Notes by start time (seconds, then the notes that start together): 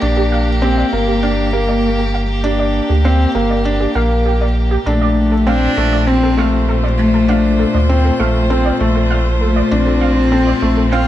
Already playing: A#3 G4
0.02 A#1 D4
0.17 G4
0.32 F5
0.62 C4 G4
0.77 D5
0.93 G1 A#3
1.08 G4
1.23 D4 F5
1.53 A#3 G4
1.69 D5
1.99 G4
2.14 F5
2.44 D4 G4
2.59 D5
2.89 D2 G4
3.05 C4 F5
3.35 G1 A#3 G4
3.50 D5
3.65 D4
3.80 G4
3.95 A#1 A#3 F5
4.26 G4
4.41 D5
4.71 G4
4.86 A#1 A#2 A3 D4 A4
5.01 D5
5.14 A3
5.32 A4
5.47 C4 D4 C5 F5
5.65 F4
5.77 A#1 A3 A4
5.93 D5
6.07 C4
6.23 A4
6.37 A3 F5
6.69 A4
6.84 D5
6.98 A3
7.14 A4
7.28 D4 F5
7.59 A4
7.74 D2 D5
7.89 C4
8.05 A4
8.20 A#1 A3 F5
8.50 C4 A4
8.65 D5
8.80 A#1 A3
8.96 A4
9.10 F5
9.41 A3 A4
9.56 D5
9.71 A#1 C4 D4
9.86 A4
10.01 F5
10.32 C4 A4
10.47 D5
10.62 A#1 A3
10.77 A4
10.92 C4 F4 F5